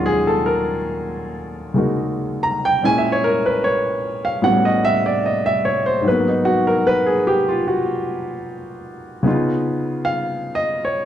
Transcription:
0.00 2.83 D#2 soft
0.00 2.81 A#2 soft
0.00 2.83 F#3 soft
0.00 1.74 G#3 soft
0.00 2.83 C#4 soft
0.00 2.85 F4 medium
0.00 1.78 F#4 medium
0.06 0.25 G#4 medium
0.27 0.43 A4 medium
0.46 0.77 A#4 medium
1.74 2.82 C#3 soft
1.74 2.82 G#3 soft
1.74 2.83 A#3 soft
1.74 2.84 D#4 soft
1.74 2.84 F#4 soft
2.43 2.63 A#5 medium
2.65 2.81 G5 medium
2.82 4.43 A#2 soft
2.82 4.44 G#3 soft
2.82 4.42 C#4 soft
2.82 4.44 E4 medium
2.82 3.01 G#5 medium
2.98 3.08 E5 medium
3.12 3.36 C#5 medium
3.24 3.43 A#4 medium
3.46 3.61 B4 medium
3.64 4.26 C#5 medium
4.25 4.41 F5 medium
4.42 6.05 A2 soft
4.42 6.06 G3 soft
4.42 6.06 B3 soft
4.42 6.06 C#4 soft
4.42 6.06 F#4 medium
4.42 4.70 F#5 medium
4.65 4.94 D#5 medium
4.84 5.04 E5 loud
5.06 5.22 D5 medium
5.26 5.51 D#5 medium
5.46 5.74 E5 medium
5.65 5.85 C#5 medium
5.86 6.02 C5 medium
6.01 9.23 G#2 soft
6.01 9.24 F#3 soft
6.08 9.26 A#3 soft
6.08 6.33 B4 medium
6.12 9.22 B3 medium
6.28 6.56 D#4 medium
6.45 6.65 F#4 medium
6.67 6.83 A#4 medium
6.87 7.13 B4 medium
7.06 7.35 G#4 medium
7.27 7.47 G4 medium
7.49 7.64 F4 medium
7.68 9.21 F#4 medium
9.23 11.05 C#3 medium
9.23 11.05 B3 medium
9.23 11.05 D#4 soft
9.28 11.05 F4 medium
10.05 10.55 F5 medium
10.55 10.82 D#5 medium
10.85 11.05 C#5 medium

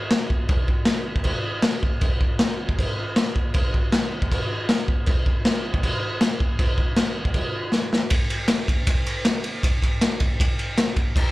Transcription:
0.11 snare loud
0.11 crash medium
0.30 kick medium
0.49 kick loud
0.49 crash medium
0.68 kick medium
0.85 snare loud
0.85 crash medium
1.16 kick medium
1.24 kick loud
1.24 crash medium
1.62 snare loud
1.62 crash medium
1.83 kick medium
2.01 kick loud
2.01 crash medium
2.21 kick medium
2.39 snare loud
2.39 crash medium
2.69 kick medium
2.79 kick loud
2.79 crash medium
3.16 snare loud
3.16 crash medium
3.36 kick medium
3.54 kick loud
3.54 crash medium
3.74 kick medium
3.92 snare loud
3.92 crash medium
4.22 kick medium
4.32 kick loud
4.32 crash medium
4.69 snare loud
4.69 crash medium
4.88 kick medium
5.06 kick loud
5.06 crash medium
5.26 kick medium
5.45 snare loud
5.45 crash medium
5.74 kick medium
5.83 kick medium
5.83 crash medium
6.21 snare loud
6.21 crash medium
6.40 kick medium
6.59 kick loud
6.59 crash medium
6.78 kick medium
6.97 snare loud
6.97 crash medium
7.25 kick loud
7.34 kick loud
7.34 crash medium
7.72 snare medium
7.93 snare medium
8.10 kick loud
8.10 ride loud
8.30 ride medium
8.48 snare loud
8.48 ride loud
8.68 kick medium
8.68 ride medium
8.87 kick loud
8.87 ride loud
9.07 ride medium
9.25 snare loud
9.25 ride loud
9.44 ride medium
9.63 kick loud
9.63 ride medium
9.82 kick medium
9.82 ride medium
10.01 snare loud
10.01 ride medium
10.20 kick medium
10.20 ride medium
10.40 kick loud
10.40 ride loud
10.59 ride medium
10.78 snare loud
10.78 ride medium
10.96 kick medium
10.96 ride medium
11.16 kick loud
11.16 crash medium

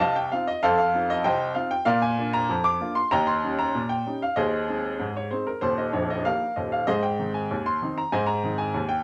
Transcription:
0.00 0.27 C2 medium
0.00 0.15 D#5 loud
0.00 0.15 F5 medium
0.00 0.15 A5 loud
0.16 0.31 G5 loud
0.32 0.49 C4 medium
0.32 0.50 D#4 medium
0.32 0.50 F4 medium
0.32 0.47 F5 loud
0.47 0.63 D#5 loud
0.63 0.89 F2 loud
0.63 0.78 A4 loud
0.63 0.78 C5 loud
0.63 0.76 F5 loud
0.78 1.09 F5 loud
0.94 1.11 C4 medium
0.94 1.11 D#4 medium
0.94 1.11 F4 medium
1.10 1.24 D#5 loud
1.24 1.51 C2 loud
1.24 1.54 C5 medium
1.24 1.54 D#5 loud
1.24 1.56 G5 loud
1.55 1.73 C4 medium
1.55 1.73 D#4 medium
1.55 1.73 F4 medium
1.55 1.71 F5 loud
1.71 1.87 G5 loud
1.85 2.13 A#2 loud
1.85 2.01 A#4 loud
1.85 2.01 D5 loud
1.85 2.02 F5 loud
2.02 2.33 G#5 loud
2.18 2.35 A#3 medium
2.18 2.36 D4 medium
2.18 2.36 F4 medium
2.33 2.65 A#5 loud
2.49 2.76 F2 loud
2.64 2.96 D6 loud
2.80 2.97 A#3 medium
2.80 2.98 D4 medium
2.80 2.98 F4 medium
2.95 3.11 C6 loud
3.11 3.38 D#2 loud
3.11 3.27 D#5 loud
3.11 3.26 G5 loud
3.11 3.27 A#5 loud
3.27 3.58 C6 loud
3.44 3.61 G3 medium
3.44 3.61 C#4 medium
3.44 3.61 D#4 medium
3.59 3.90 A#5 loud
3.75 4.01 A#2 medium
3.89 4.21 G5 loud
4.06 4.23 G3 medium
4.06 4.23 C#4 soft
4.06 4.24 D#4 medium
4.22 4.37 F5 medium
4.36 4.63 D#2 medium
4.36 5.12 G#4 medium
4.36 5.12 C5 medium
4.36 5.15 D#5 loud
4.68 4.86 G#3 medium
4.68 4.86 C4 medium
4.68 4.86 D#4 medium
5.00 5.26 G#2 medium
5.16 5.32 C#5 medium
5.31 5.48 G#3 soft
5.31 5.49 C4 soft
5.31 5.49 D#4 medium
5.31 5.47 C5 medium
5.47 5.62 A#4 medium
5.61 5.87 D#1 medium
5.61 5.87 D#2 medium
5.61 5.77 C5 loud
5.78 5.94 D#5 medium
5.93 6.19 A#0 medium
5.93 6.19 A#1 medium
5.93 6.09 C#5 medium
6.10 6.26 D#5 medium
6.25 6.43 G3 soft
6.25 6.43 A#3 medium
6.25 6.43 D#4 medium
6.25 6.55 A#4 medium
6.25 6.56 F5 loud
6.56 6.82 D#1 medium
6.56 6.82 D#2 medium
6.56 6.72 D#5 medium
6.72 6.88 F5 medium
6.87 7.14 G#2 medium
6.87 7.03 G#4 medium
6.87 7.03 C5 medium
6.87 7.03 D#5 loud
7.03 7.34 G5 loud
7.19 7.36 D#3 medium
7.19 7.37 C4 medium
7.19 7.37 D#4 medium
7.34 7.66 G#5 medium
7.51 7.77 D#2 medium
7.66 7.97 C6 loud
7.82 7.99 D#3 medium
7.82 7.99 C4 medium
7.82 7.99 D#4 medium
7.98 8.13 A#5 loud
8.12 8.39 G#2 loud
8.12 8.28 C5 medium
8.12 8.28 D#5 medium
8.12 8.28 G#5 loud
8.26 8.59 A#5 loud
8.44 8.61 D#3 medium
8.44 8.61 C4 medium
8.44 8.62 D#4 medium
8.58 8.90 G#5 loud
8.74 9.01 D#2 medium
8.89 9.03 G5 loud

